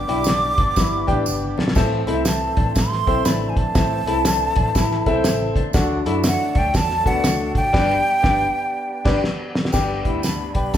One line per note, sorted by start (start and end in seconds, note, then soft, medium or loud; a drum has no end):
0.00 0.54 G2 medium
0.00 1.73 G3 medium
0.00 1.73 B3 medium
0.00 1.72 D4 medium
0.00 1.55 D6 loud
0.08 0.50 B1 medium
0.08 0.73 D4 medium
0.08 0.23 E4 medium
0.08 0.73 G4 medium
0.08 0.73 B4 medium
0.08 0.73 D5 medium
0.08 0.74 G5 medium
0.08 closed hi-hat medium
0.08 muted conga soft
0.24 0.52 D4 medium
0.24 snare loud
0.24 closed hi-hat loud
0.24 tambourine medium
0.24 high conga medium
0.58 0.73 G1 medium
0.58 0.73 D4 medium
0.58 kick loud
0.58 closed hi-hat medium
0.58 low conga medium
0.76 1.03 G1 loud
0.76 1.24 E4 medium
0.76 kick medium
0.76 snare loud
0.76 closed hi-hat medium
0.76 tambourine medium
0.76 muted conga soft
0.76 low conga medium
1.07 1.23 A1 medium
1.07 1.60 D4 loud
1.07 1.60 G4 medium
1.07 1.60 B4 medium
1.07 1.60 D5 medium
1.07 1.60 G5 loud
1.07 kick medium
1.07 closed hi-hat medium
1.07 muted conga soft
1.07 low conga medium
1.26 1.53 G1 loud
1.26 tambourine medium
1.26 high conga medium
1.42 high conga medium
1.58 1.73 A#1 medium
1.58 1.72 D4 medium
1.58 snare medium
1.58 high conga medium
1.68 snare loud
1.75 2.02 A1 loud
1.75 2.53 A2 medium
1.75 5.71 E3 medium
1.75 7.71 A3 medium
1.75 1.98 C4 medium
1.75 5.71 C4 medium
1.75 1.98 E4 medium
1.75 2.01 A4 medium
1.75 1.98 A4 medium
1.75 1.98 C5 medium
1.75 1.99 E5 loud
1.75 kick loud
1.75 snare loud
1.75 tambourine medium
1.75 splash medium
1.75 muted conga medium
2.07 2.49 C2 medium
2.07 2.72 C4 medium
2.07 2.22 E4 medium
2.07 2.73 E4 medium
2.07 2.73 A4 medium
2.07 2.73 C5 medium
2.07 2.12 D#5 medium
2.07 closed hi-hat medium
2.07 muted conga medium
2.14 2.76 E5 medium
2.25 2.72 A5 medium
2.25 snare loud
2.25 closed hi-hat loud
2.25 tambourine medium
2.25 high conga medium
2.57 2.72 A1 medium
2.57 2.72 D4 medium
2.57 kick loud
2.57 closed hi-hat medium
2.57 low conga medium
2.75 3.02 A1 loud
2.75 3.27 C6 loud
2.75 kick medium
2.75 snare loud
2.75 closed hi-hat medium
2.75 tambourine medium
2.75 muted conga soft
2.75 low conga medium
2.92 snare soft
3.06 3.23 B1 medium
3.06 3.59 C4 medium
3.06 3.22 C4 medium
3.06 3.59 E4 medium
3.06 3.59 A4 medium
3.06 3.59 C5 medium
3.06 3.60 E5 medium
3.06 kick medium
3.06 closed hi-hat medium
3.25 3.52 A1 medium
3.25 3.73 D4 medium
3.25 3.51 B5 loud
3.25 snare loud
3.25 closed hi-hat medium
3.25 tambourine medium
3.25 high conga medium
3.40 high conga soft
3.49 3.58 G#5 medium
3.57 3.72 A#1 medium
3.57 5.56 A5 loud
3.57 kick medium
3.57 closed hi-hat medium
3.57 high conga medium
3.75 4.01 A1 loud
3.75 4.52 A2 medium
3.75 3.97 C4 medium
3.75 3.97 E4 medium
3.75 3.97 A4 medium
3.75 3.97 C5 medium
3.75 3.98 E5 medium
3.75 kick loud
3.75 snare loud
3.75 closed hi-hat medium
3.75 tambourine medium
3.75 muted conga medium
4.06 4.48 C2 medium
4.06 4.72 C4 medium
4.06 4.72 E4 medium
4.06 4.22 E4 medium
4.06 4.72 A4 medium
4.06 4.72 C5 medium
4.06 4.72 E5 medium
4.06 closed hi-hat medium
4.06 muted conga soft
4.25 4.51 D4 medium
4.25 snare loud
4.25 closed hi-hat loud
4.25 tambourine loud
4.25 high conga medium
4.56 4.72 A1 medium
4.56 4.72 D4 medium
4.56 kick loud
4.56 closed hi-hat medium
4.56 low conga medium
4.75 5.01 A1 loud
4.75 5.22 E4 medium
4.75 kick loud
4.75 snare loud
4.75 closed hi-hat medium
4.75 tambourine medium
4.75 muted conga soft
4.75 low conga medium
4.91 snare soft
5.06 5.22 B1 medium
5.06 5.58 C4 loud
5.06 5.59 E4 medium
5.06 5.59 A4 loud
5.06 5.11 B4 medium
5.06 5.59 E5 loud
5.06 kick medium
5.06 closed hi-hat medium
5.06 muted conga soft
5.13 5.62 C5 medium
5.24 5.51 A1 medium
5.24 snare loud
5.24 closed hi-hat loud
5.24 tambourine medium
5.24 high conga medium
5.40 high conga medium
5.56 5.71 D#2 loud
5.56 5.71 D4 medium
5.56 kick medium
5.56 closed hi-hat medium
5.56 high conga medium
5.73 6.00 D2 loud
5.73 6.52 D3 medium
5.73 7.71 F#3 medium
5.73 9.69 D4 medium
5.73 5.97 D4 medium
5.73 5.99 D4 medium
5.73 5.97 F#4 medium
5.73 5.97 A4 medium
5.73 5.97 D5 medium
5.73 5.97 F#5 loud
5.73 kick loud
5.73 snare loud
5.73 closed hi-hat medium
5.73 tambourine medium
5.73 muted conga medium
6.05 6.34 F#2 loud
6.05 6.71 D4 medium
6.05 6.20 E4 medium
6.05 6.71 F#4 medium
6.05 6.71 A4 medium
6.05 6.71 D5 medium
6.05 6.72 E5 medium
6.05 closed hi-hat medium
6.05 muted conga soft
6.24 snare loud
6.24 closed hi-hat medium
6.24 tambourine loud
6.24 high conga medium
6.28 6.60 F#5 loud
6.55 6.63 D2 medium
6.55 6.70 D4 medium
6.55 6.77 G5 loud
6.55 kick loud
6.55 closed hi-hat medium
6.55 low conga medium
6.65 6.73 D2 loud
6.74 7.01 E2 loud
6.74 7.06 A5 loud
6.74 kick loud
6.74 snare loud
6.74 closed hi-hat medium
6.74 tambourine medium
6.74 muted conga medium
6.74 low conga medium
6.90 snare soft
7.05 7.21 D2 medium
7.05 7.20 B3 medium
7.05 7.58 D4 medium
7.05 7.58 F#4 medium
7.05 7.58 A4 medium
7.05 7.58 D5 medium
7.05 7.53 F#5 loud
7.05 7.58 A5 medium
7.05 kick medium
7.05 closed hi-hat medium
7.24 7.50 D2 loud
7.24 7.71 D4 medium
7.24 snare loud
7.24 closed hi-hat medium
7.24 tambourine medium
7.24 high conga medium
7.39 high conga medium
7.55 7.71 G#1 medium
7.55 9.20 G5 loud
7.55 kick medium
7.55 closed hi-hat medium
7.55 high conga medium
7.73 7.96 G1 loud
7.73 7.95 G2 loud
7.73 9.71 G3 medium
7.73 9.71 B3 medium
7.73 7.95 D4 loud
7.73 7.95 G4 loud
7.73 7.95 B4 loud
7.73 7.95 D5 loud
7.73 7.95 G5 loud
7.73 kick loud
7.73 snare loud
7.73 crash medium
8.23 8.45 G1 loud
8.23 8.45 D4 loud
8.23 8.45 G4 loud
8.23 8.45 B4 medium
8.23 8.45 D5 loud
8.23 8.45 G5 loud
8.23 kick loud
8.23 snare loud
9.05 9.18 G1 loud
9.05 9.17 D4 loud
9.05 9.18 G4 loud
9.05 9.18 B4 loud
9.05 9.18 D5 loud
9.05 kick loud
9.05 snare loud
9.05 crash medium
9.24 snare medium
9.55 snare loud
9.65 snare loud
9.72 10.00 G1 loud
9.72 10.51 G2 medium
9.72 10.77 G3 medium
9.72 10.77 B3 medium
9.72 10.77 D4 medium
9.72 10.27 G4 medium
9.72 9.99 G4 medium
9.72 10.27 B4 medium
9.72 10.28 D5 medium
9.72 10.28 G5 medium
9.72 kick loud
9.72 snare loud
9.72 crash medium
9.72 tambourine medium
9.72 muted conga medium
10.05 10.47 D2 medium
10.05 10.20 E4 medium
10.05 kick medium
10.05 closed hi-hat medium
10.05 muted conga soft
10.23 10.71 D4 medium
10.23 10.53 B5 medium
10.23 snare medium
10.23 closed hi-hat medium
10.23 tambourine medium
10.23 high conga medium
10.55 10.71 B1 medium
10.55 10.77 G4 medium
10.55 10.77 B4 medium
10.55 10.77 D5 medium
10.55 10.77 G5 medium
10.55 10.75 B5 loud
10.55 kick medium
10.55 closed hi-hat medium
10.74 10.77 G1 medium
10.74 10.77 E4 medium
10.74 10.77 A5 loud
10.74 kick medium
10.74 closed hi-hat medium
10.74 tambourine medium